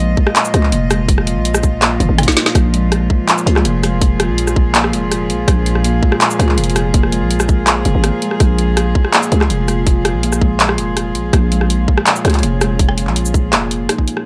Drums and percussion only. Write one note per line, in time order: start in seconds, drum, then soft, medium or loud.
0.17 kick loud
0.27 cross-stick medium
0.36 clap loud
0.36 closed hi-hat medium
0.45 shaker medium
0.54 cross-stick medium
0.54 closed hi-hat medium
0.63 clap soft
0.72 closed hi-hat medium
0.91 cross-stick medium
0.91 closed hi-hat medium
0.91 shaker soft
1.09 kick loud
1.09 closed hi-hat medium
1.18 cross-stick medium
1.27 closed hi-hat medium
1.45 closed hi-hat medium
1.54 cross-stick medium
1.54 shaker medium
1.63 kick loud
1.63 shaker soft
1.82 cross-stick medium
1.82 clap loud
1.82 closed hi-hat medium
2.00 closed hi-hat medium
2.00 high tom medium
2.18 cross-stick medium
2.18 closed hi-hat medium
2.18 mid tom medium
2.23 closed hi-hat medium
2.28 kick medium
2.28 snare medium
2.28 closed hi-hat medium
2.32 closed hi-hat soft
2.37 snare loud
2.37 closed hi-hat medium
2.46 cross-stick medium
2.46 snare medium
2.55 kick loud
2.55 cross-stick medium
2.55 closed hi-hat medium
2.74 closed hi-hat medium
2.92 cross-stick medium
2.92 closed hi-hat medium
3.10 kick loud
3.29 clap loud
3.29 closed hi-hat medium
3.38 shaker medium
3.47 closed hi-hat medium
3.56 cross-stick medium
3.56 clap soft
3.65 closed hi-hat medium
3.83 cross-stick medium
3.83 closed hi-hat medium
3.83 shaker soft
4.01 kick loud
4.01 closed hi-hat medium
4.20 cross-stick medium
4.20 closed hi-hat medium
4.38 closed hi-hat medium
4.47 cross-stick medium
4.47 shaker medium
4.56 kick loud
4.75 clap loud
4.75 closed hi-hat medium
4.84 cross-stick medium
4.93 closed hi-hat medium
5.12 cross-stick medium
5.12 closed hi-hat medium
5.30 closed hi-hat medium
5.48 kick loud
5.48 cross-stick medium
5.48 closed hi-hat medium
5.66 closed hi-hat medium
5.75 cross-stick medium
5.84 closed hi-hat medium
6.03 kick loud
6.12 cross-stick medium
6.21 clap loud
6.21 closed hi-hat medium
6.31 shaker medium
6.40 cross-stick medium
6.40 closed hi-hat medium
6.49 clap soft
6.58 closed hi-hat medium
6.64 closed hi-hat medium
6.70 closed hi-hat medium
6.76 cross-stick medium
6.76 closed hi-hat medium
6.76 shaker soft
6.94 kick loud
6.94 closed hi-hat medium
7.03 cross-stick medium
7.12 closed hi-hat medium
7.31 closed hi-hat medium
7.40 cross-stick medium
7.40 shaker medium
7.49 kick loud
7.49 shaker soft
7.67 cross-stick medium
7.67 clap loud
7.67 closed hi-hat medium
7.85 closed hi-hat medium
8.04 cross-stick medium
8.04 closed hi-hat medium
8.22 closed hi-hat medium
8.31 cross-stick medium
8.40 kick loud
8.40 cross-stick medium
8.40 closed hi-hat medium
8.59 closed hi-hat medium
8.77 cross-stick medium
8.77 closed hi-hat medium
8.95 kick loud
9.05 cross-stick medium
9.13 clap loud
9.13 closed hi-hat medium
9.23 shaker medium
9.32 closed hi-hat medium
9.41 cross-stick medium
9.41 clap soft
9.50 closed hi-hat medium
9.68 cross-stick medium
9.68 closed hi-hat medium
9.68 shaker soft
9.87 kick loud
9.87 closed hi-hat medium
10.05 cross-stick medium
10.05 closed hi-hat medium
10.23 closed hi-hat medium
10.32 cross-stick medium
10.32 shaker medium
10.41 kick loud
10.60 clap loud
10.60 closed hi-hat medium
10.69 cross-stick medium
10.78 closed hi-hat medium
10.97 cross-stick medium
10.97 closed hi-hat medium
11.15 closed hi-hat medium
11.33 kick loud
11.33 cross-stick medium
11.33 closed hi-hat medium
11.52 closed hi-hat medium
11.61 cross-stick medium
11.70 closed hi-hat medium
11.88 kick loud
11.98 cross-stick medium
12.07 clap loud
12.07 closed hi-hat medium
12.16 shaker medium
12.25 cross-stick medium
12.25 closed hi-hat medium
12.28 cross-stick soft
12.28 closed hi-hat medium
12.31 cross-stick soft
12.34 cross-stick soft
12.34 clap soft
12.34 closed hi-hat soft
12.37 cross-stick soft
12.37 closed hi-hat soft
12.40 cross-stick soft
12.40 closed hi-hat medium
12.61 cross-stick medium
12.61 closed hi-hat medium
12.61 shaker soft
12.79 kick loud
12.79 closed hi-hat medium
12.89 cross-stick medium
12.98 closed hi-hat medium
13.07 clap soft
13.16 closed hi-hat medium
13.25 shaker medium
13.34 kick loud
13.34 shaker soft
13.53 cross-stick medium
13.53 clap loud
13.53 closed hi-hat medium
13.71 closed hi-hat medium
13.89 cross-stick medium
13.89 closed hi-hat medium
13.99 kick medium
14.08 closed hi-hat medium
14.17 cross-stick medium